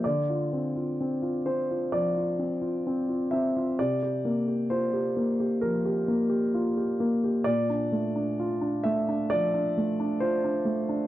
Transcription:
\new Staff \with { instrumentName = "Grand piano" } { \time 4/4 \key d \minor \tempo 4 = 65 << { d''4. c''8 d''4. e''8 | d''4 c''4 bes'4 r4 | d''4. e''8 d''4 c''4 | } \\ { d16 f'16 c'16 f'16 c'16 f'16 c'16 f'16 f16 f'16 c'16 f'16 c'16 f'16 c'16 f'16 | c16 g'16 bes16 g'16 f'16 g'16 bes16 g'16 f16 g'16 bes16 g'16 f'16 g'16 bes16 g'16 | bes,16 d'16 a16 d'16 f'16 d'16 a16 d'16 f16 d'16 a16 d'16 f'16 d'16 a16 d'16 | } >> }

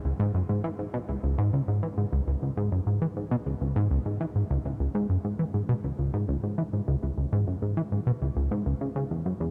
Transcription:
\new Staff \with { instrumentName = "Analog synth bass" } { \clef bass \time 4/4 \key cis \minor \tempo 4 = 101 cis,16 gis,16 fis,16 gis,16 e16 gis,16 b,16 cis,16 cis,16 gis,16 cis,16 gis,16 e16 gis,16 cis,16 cis,16 | cis,16 gis,16 fis,16 gis,16 e16 gis,16 b,16 cis,16 cis,16 gis,16 cis,16 gis,16 e16 gis,16 cis,16 cis,16 | cis,16 gis,16 fis,16 gis,16 e16 gis,16 b,16 cis,16 cis,16 gis,16 cis,16 gis,16 e16 gis,16 cis,16 cis,16 | cis,16 gis,16 fis,16 gis,16 e16 gis,16 b,16 cis,16 cis,16 gis,16 cis,16 cis16 cis16 e,16 fis,16 e,16 | }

